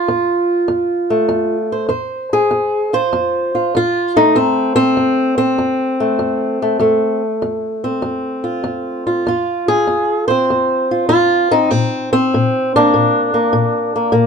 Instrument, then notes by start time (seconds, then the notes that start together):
steel-string acoustic guitar
Already playing: F4
0.08 F2
0.68 F2
1.10 A3
1.29 F2
1.72 C5
1.89 F2 C5
2.33 G#4
2.51 F2
2.93 F4 C5
3.13 F2
3.55 F4
3.75 F2 F4
4.16 A3 D#4
4.35 F2 C4
4.76 C4
4.97 F2
5.38 C4
5.58 F2
6.00 A3
6.19 F2
6.62 A3
6.79 F2 A3
7.42 F2
7.84 C4
8.02 F2
8.44 F4
8.64 F2
9.07 F4
9.27 F2 F4
9.68 G#4
9.87 F2
10.28 C4 C5
10.50 F2
10.91 F4
11.09 F2 F4
11.51 C4 D#4
11.71 A#2 C4
12.13 C4
12.34 A#2
12.76 A#3 D4
12.94 A#2
13.34 A#3
13.53 A#2
13.96 A#3
14.12 A#2 A#3